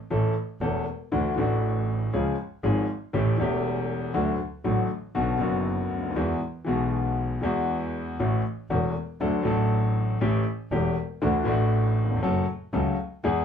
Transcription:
0.11 0.32 A1 medium
0.11 0.32 A2 medium
0.11 0.32 E3 medium
0.11 0.32 A3 medium
0.11 0.33 C#4 medium
0.11 0.32 A4 medium
0.61 0.83 E1 medium
0.61 0.83 E2 medium
0.61 0.83 E3 medium
0.61 0.83 A3 medium
0.61 0.83 C#4 medium
0.61 0.83 A4 medium
1.12 1.33 D2 medium
1.12 1.34 D2 medium
1.12 1.33 D3 medium
1.12 1.33 E3 medium
1.12 1.33 A3 medium
1.12 1.33 D4 medium
1.12 1.33 F#4 medium
1.36 2.10 A1 medium
1.36 2.10 A2 medium
1.36 2.09 E3 medium
1.36 2.09 A3 medium
1.36 2.10 D4 medium
1.40 2.11 F#4 medium
2.13 2.35 C#2 medium
2.13 2.35 C#3 medium
2.13 2.35 F3 medium
2.13 2.35 G#3 medium
2.13 2.35 C#4 medium
2.13 2.35 G#4 medium
2.63 2.85 G#1 medium
2.63 2.85 G#2 medium
2.63 2.85 F3 medium
2.63 2.85 G#3 medium
2.63 2.85 C#4 medium
2.63 2.85 G#4 medium
3.13 3.35 A1 medium
3.13 3.36 A1 medium
3.13 3.35 A2 medium
3.13 3.35 E3 medium
3.13 3.35 A3 medium
3.13 3.35 C#4 medium
3.13 3.35 G4 medium
3.38 4.11 E1 medium
3.38 4.12 E1 medium
3.38 4.11 E2 medium
3.38 4.10 E3 medium
3.38 4.11 A3 medium
3.38 4.12 C#4 medium
3.42 4.12 G4 medium
4.14 4.36 D2 medium
4.14 4.36 D3 medium
4.14 4.36 F#3 medium
4.14 4.36 A3 medium
4.14 4.36 F#4 medium
4.64 4.86 A1 medium
4.64 4.86 A2 medium
4.64 4.86 D3 medium
4.64 4.86 F#3 medium
4.64 4.86 A3 medium
4.64 4.86 F#4 medium
5.15 5.37 B1 medium
5.15 5.36 B2 medium
5.15 5.36 D3 medium
5.15 5.36 F#3 medium
5.15 5.37 B3 medium
5.15 5.36 F#4 medium
5.37 6.12 F#1 medium
5.37 6.12 F#2 medium
5.37 6.11 D3 medium
5.37 6.12 F#3 medium
5.37 6.12 B3 medium
5.42 5.91 F#1 medium
5.42 6.13 F#4 medium
5.91 6.16 D2 medium
5.97 6.04 C#2 soft
6.03 6.10 D2 soft
6.10 6.17 D#2 medium
6.16 6.37 E2 medium
6.16 6.38 E2 medium
6.16 6.38 E3 medium
6.16 6.37 G#3 medium
6.16 6.38 B3 medium
6.16 6.38 F#4 medium
6.65 7.39 B1 medium
6.65 7.39 B2 medium
6.65 7.38 E3 medium
6.65 7.39 G#3 medium
6.65 7.39 B3 medium
6.65 7.40 F#4 medium
7.42 8.15 E2 medium
7.42 8.16 E3 medium
7.42 8.15 G#3 medium
7.42 8.16 B3 medium
7.42 8.16 F#4 medium
8.19 8.41 A1 medium
8.19 8.41 A2 medium
8.19 8.41 E3 medium
8.19 8.41 A3 medium
8.19 8.41 C#4 medium
8.19 8.41 F#4 medium
8.70 8.91 E1 medium
8.70 8.91 E2 medium
8.70 8.91 E3 medium
8.70 8.91 A3 medium
8.70 8.91 C#4 medium
8.70 8.91 F#4 medium
9.20 9.42 D2 medium
9.20 9.42 D3 medium
9.20 9.42 F#3 medium
9.20 9.42 A3 medium
9.20 9.42 D4 medium
9.20 9.42 A4 medium
9.43 10.18 A1 medium
9.43 10.18 A2 medium
9.43 10.17 F#3 medium
9.43 10.17 A3 medium
9.43 10.18 D4 medium
9.43 10.19 A4 medium
10.21 10.43 A1 medium
10.21 10.43 A2 medium
10.21 10.43 E3 medium
10.21 10.43 A3 medium
10.21 10.43 C#4 medium
10.21 10.43 G4 medium
10.71 10.93 E1 medium
10.71 10.93 E2 medium
10.71 10.93 E3 medium
10.71 10.93 A3 medium
10.71 10.93 C#4 medium
10.71 10.94 G4 medium
11.22 11.43 D2 medium
11.22 11.44 D2 medium
11.22 11.44 D3 medium
11.22 11.42 E3 medium
11.22 11.44 A3 medium
11.22 11.44 D4 medium
11.22 11.44 F#4 medium
11.44 12.19 A1 medium
11.44 12.19 A1 loud
11.44 12.19 A2 medium
11.44 12.18 E3 medium
11.44 12.18 A3 medium
11.44 12.19 D4 medium
11.44 12.20 F#4 medium
12.04 12.11 D#2 soft
12.10 12.17 E2 medium
12.17 12.23 F2 medium
12.23 12.45 F#1 medium
12.23 12.44 F#2 medium
12.23 12.45 F#3 medium
12.23 12.45 A3 medium
12.23 12.45 C#4 medium
12.23 12.45 A4 medium
12.73 12.95 C#2 medium
12.73 12.95 C#3 medium
12.73 12.95 F#3 medium
12.73 12.95 A3 medium
12.73 12.95 C#4 medium
12.73 12.95 A4 medium
13.24 13.45 E2 medium
13.24 13.45 E3 medium
13.24 13.45 G#3 medium
13.24 13.45 B3 medium
13.24 13.45 G#4 medium

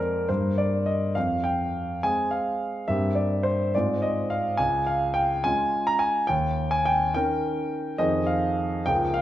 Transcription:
0.00 0.27 F2 medium
0.00 0.25 G#3 soft
0.00 0.26 A#3 soft
0.00 0.31 A#4 medium
0.00 0.29 C5 medium
0.00 0.31 D5 medium
0.29 1.14 G2 soft
0.29 1.12 G3 soft
0.29 1.13 A#3 soft
0.29 1.13 A#4 soft
0.29 0.58 C5 medium
0.58 0.87 D5 medium
0.86 1.16 D#5 medium
1.15 2.00 F2 medium
1.15 1.45 F5 medium
1.44 2.02 G5 medium
2.03 2.84 G#3 soft
2.03 2.85 C4 soft
2.03 2.85 G#4 soft
2.03 2.31 G#5 medium
2.31 2.88 F5 medium
2.88 3.71 G2 medium
2.88 3.70 A#3 soft
2.88 3.70 C4 soft
2.88 3.71 G4 soft
2.88 3.16 E5 medium
3.15 3.44 D5 medium
3.43 3.73 C5 medium
3.75 4.58 G#2 medium
3.75 4.56 G#3 soft
3.75 4.56 C4 soft
3.75 4.57 F4 soft
3.75 4.03 D5 medium
4.02 4.31 D#5 medium
4.30 4.59 F5 medium
4.57 5.41 C#2 medium
4.57 4.87 G#5 medium
4.87 5.15 F5 medium
5.14 5.43 G5 medium
5.44 6.25 G#3 soft
5.44 6.25 C#4 soft
5.44 6.25 F4 medium
5.44 5.86 G#5 medium
5.87 6.01 A#5 medium
5.99 6.28 G#5 medium
6.27 7.11 D#2 medium
6.27 6.70 G5 medium
6.71 6.85 G#5 medium
6.85 7.13 G5 medium
7.14 7.95 D#3 soft
7.14 7.96 C#4 medium
7.14 7.96 A#4 medium
7.14 7.99 G5 medium
7.98 8.83 F2 medium
7.98 8.82 D#3 soft
7.98 8.82 C4 soft
7.98 8.82 G#4 soft
7.98 8.27 D#5 medium
8.27 8.85 F5 medium
8.86 9.22 C#2 medium
8.86 9.22 F3 soft
8.86 9.22 A#3 soft
8.86 9.22 G#4 soft
8.86 9.15 G5 medium
9.14 9.22 F5 medium

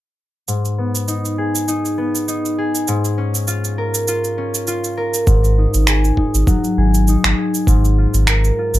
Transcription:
0.48 2.87 G#2 medium
0.48 cabasa soft
0.65 cabasa soft
0.78 1.97 B3 medium
0.95 cabasa medium
1.08 1.68 D#4 medium
1.08 cabasa soft
1.25 cabasa soft
1.38 2.58 G#4 medium
1.55 cabasa medium
1.68 2.28 D#4 medium
1.68 cabasa soft
1.85 cabasa soft
1.98 3.84 B3 medium
2.15 cabasa medium
2.28 4.98 D#4 medium
2.28 cabasa soft
2.45 cabasa soft
2.58 4.86 G#4 medium
2.75 cabasa medium
2.88 5.26 G#2 medium
2.88 cabasa soft
3.05 cabasa soft
3.18 4.37 C#4 medium
3.35 cabasa medium
3.48 4.08 F4 medium
3.48 cabasa medium
3.65 cabasa soft
3.78 4.97 A#4 medium
3.95 cabasa medium
4.08 4.67 F4 medium
4.08 cabasa medium
4.24 cabasa soft
4.38 7.28 C#4 medium
4.55 cabasa medium
4.67 6.54 F4 medium
4.67 cabasa medium
4.84 cabasa soft
4.97 7.10 A#4 medium
5.14 cabasa medium
5.27 5.67 G#1 medium
5.27 7.67 G#2 medium
5.27 kick loud
5.27 cabasa soft
5.44 cabasa soft
5.58 6.17 D#4 medium
5.74 6.12 G#1 medium
5.74 cabasa medium
5.87 6.77 G#4 medium
5.87 finger snap medium
5.87 cabasa medium
6.04 cabasa soft
6.17 7.08 D#4 medium
6.17 kick medium
6.34 6.44 G#1 medium
6.34 cabasa medium
6.47 8.79 F#3 medium
6.47 kick loud
6.47 cabasa medium
6.64 cabasa soft
6.77 7.17 G#1 medium
6.77 7.38 G#4 medium
6.94 cabasa medium
7.08 8.79 D#4 medium
7.08 cabasa soft
7.24 7.34 G#1 medium
7.24 finger snap medium
7.24 cabasa soft
7.38 8.79 G#4 medium
7.54 cabasa medium
7.67 8.07 G#1 medium
7.67 8.79 G#2 medium
7.67 kick loud
7.67 cabasa medium
7.85 cabasa soft
7.98 8.58 F4 medium
8.14 8.51 G#1 loud
8.14 cabasa medium
8.27 8.79 A#4 medium
8.27 finger snap medium
8.27 cabasa medium
8.44 cabasa soft
8.59 8.79 F4 medium
8.74 8.79 G#1 medium
8.74 cabasa medium

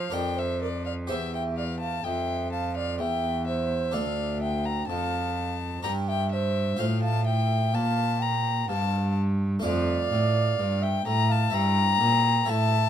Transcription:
0.00 0.12 F3 medium
0.00 0.15 C5 medium
0.00 0.15 F5 medium
0.10 1.06 F2 medium
0.10 1.12 F2 medium
0.10 1.06 D4 medium
0.10 1.06 A#4 medium
0.10 0.38 D5 medium
0.10 0.40 G5 medium
0.37 0.62 C5 medium
0.37 0.61 E5 medium
0.62 0.68 A#4 medium
0.62 0.85 D5 medium
0.86 0.92 D5 medium
0.86 0.94 F5 medium
1.07 2.01 E2 medium
1.07 2.05 E2 medium
1.07 3.89 G4 soft
1.07 3.90 C5 soft
1.07 1.15 C5 medium
1.07 1.34 E5 medium
1.33 1.57 E5 medium
1.33 1.43 G5 medium
1.57 1.64 D5 medium
1.57 1.79 F5 medium
1.80 2.04 F5 medium
1.80 2.06 A5 medium
2.04 2.96 F2 medium
2.04 3.02 F2 medium
2.04 2.51 E5 medium
2.04 2.52 G5 medium
2.52 2.78 F5 medium
2.52 2.76 A5 medium
2.76 3.02 D5 medium
2.76 3.00 F5 medium
2.99 3.90 E2 medium
2.99 3.96 E2 medium
2.99 3.47 E5 medium
2.99 3.46 G5 loud
3.47 3.95 C5 medium
3.47 3.95 E5 medium
3.91 4.86 D2 medium
3.91 4.89 D2 medium
3.91 5.80 D4 medium
3.91 5.81 A4 medium
3.91 4.43 D5 medium
3.91 4.41 F5 medium
4.42 4.69 E5 medium
4.42 4.67 G5 medium
4.65 4.89 G5 medium
4.65 4.87 A#5 medium
4.87 5.83 F2 medium
4.87 5.81 F2 medium
4.87 5.56 F5 medium
4.87 5.82 A5 loud
5.83 6.75 G2 medium
5.83 6.78 G2 medium
5.83 6.75 D4 medium
5.83 6.76 G4 medium
5.83 6.10 G5 medium
5.83 5.91 A#5 loud
6.08 6.35 E5 medium
6.08 6.31 G5 loud
6.32 6.79 C5 medium
6.32 6.81 E5 loud
6.77 7.75 A2 medium
6.77 7.70 A2 medium
6.77 9.58 F4 medium
6.77 9.59 C5 medium
6.77 6.86 C5 medium
6.77 7.02 F5 medium
7.02 7.27 F5 medium
7.02 7.26 A5 loud
7.25 7.75 E5 medium
7.25 7.76 G5 loud
7.73 8.69 A#2 medium
7.73 8.65 A#2 medium
7.73 8.21 F5 loud
7.73 8.24 A5 loud
8.20 8.70 G5 medium
8.20 8.69 A#5 loud
8.69 9.62 G2 medium
8.69 9.60 G2 medium
8.69 9.16 F5 medium
8.69 9.16 A5 loud
9.59 10.53 A3 medium
9.59 11.48 F4 medium
9.59 10.84 D5 loud
9.59 11.48 D5 medium
9.63 10.07 F2 medium
9.63 10.84 F5 loud
10.11 10.57 A2 medium
10.11 10.55 A2 medium
10.59 11.05 G2 medium
10.59 11.02 G2 medium
10.82 11.04 E5 medium
10.82 11.06 G5 loud
11.05 11.52 A2 medium
11.05 11.49 A2 medium
11.05 11.31 G5 loud
11.05 11.33 A#5 loud
11.30 11.53 F5 medium
11.30 11.55 A5 loud
11.50 12.00 G2 medium
11.50 11.97 G2 medium
11.50 12.44 E4 medium
11.50 12.45 E5 medium
11.50 12.51 G5 loud
11.50 12.51 A#5 loud
12.00 12.48 A#2 medium
12.00 12.45 A#2 medium
12.45 12.89 A2 medium
12.45 12.89 E4 medium
12.45 12.89 C#5 medium
12.50 12.89 E5 loud
12.50 12.89 A5 loud

